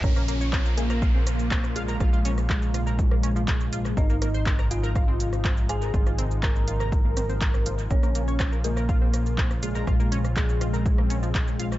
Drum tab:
HH |--x---x---x---x-|--x---x---x-x-x-|--x---x---x---x-|--x---x---x-x-x-|
SH |xxxxxxxxx-xxxxxx|xxxxxxxxx-xxxxxx|xxxxxxxxx-xxxxxx|xxxxxxxxx-xxxxxx|
CP |----x-------x---|----x-------x---|----x-------x---|----x-------x---|
SD |-r--r--r--r--r--|r--r--r--r--r--r|--r--r--r--r--r-|-r--r--r--r--r--|
BD |o---o---o---o---|o---o---o---o---|o---o---o---o---|o---o---o---o---|

HH |--x---x---x---x-|--x---x---x-x-x-|
SH |xxxxxxxxx-xxxxxx|xxxxxxxxx-xxxxxx|
CP |----x-------x---|----x-------x---|
SD |-r--r--r--r--r--|r--r--r--r--r--r|
BD |o---o---o---o---|o---o---o---o---|